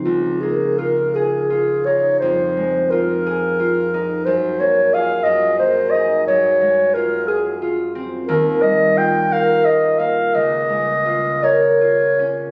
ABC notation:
X:1
M:6/8
L:1/8
Q:3/8=58
K:Db
V:1 name="Clarinet"
F A B A2 d | c2 B4 | c d f e c e | d2 B A z2 |
B e =g f e f | e3 d3 |]
V:2 name="Harp"
[D,,F,EA] B, F A F E | F,, A, F A F E | G,, B, [FA] G,, B, [EA] | G,, A, F A F C |
E,, =G, F B F B, | D,, A, F B F D |]